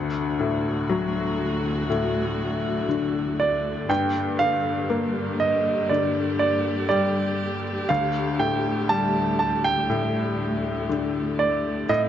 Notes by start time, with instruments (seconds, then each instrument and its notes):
Already playing: felt piano D2, string section D2 D3 A3 F#4, grand piano F#5
0.40 felt piano A2
0.89 felt piano F#3
1.90 felt piano A2
2.89 felt piano D3
3.40 grand piano D5
3.89 felt piano G2, string section G2 A#3 G4, grand piano G5
4.39 felt piano D3, grand piano F5
4.90 felt piano A#3
5.40 grand piano D#5
5.89 felt piano D3, grand piano D5
6.39 grand piano D5
6.89 felt piano G3, grand piano D5
7.89 string section D2 A3, felt piano D2, grand piano F5
8.39 felt piano A2, grand piano G5
8.89 felt piano G3, grand piano A5
9.39 grand piano A5
9.64 grand piano G5
9.89 felt piano A2
10.89 felt piano D3
11.39 grand piano D5
11.89 felt piano A2, string section A2 C4 D#4, grand piano D#5